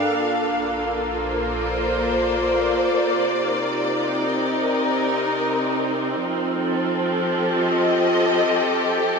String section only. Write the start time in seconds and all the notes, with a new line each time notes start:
Already playing: D4 A4 A#4 F5
0.10 A#3
0.17 F4
1.23 C5
1.48 D5
3.16 C3
3.42 D#4
3.58 C4
4.27 A#4
6.20 F3
6.48 A4
7.13 G4
7.57 D#5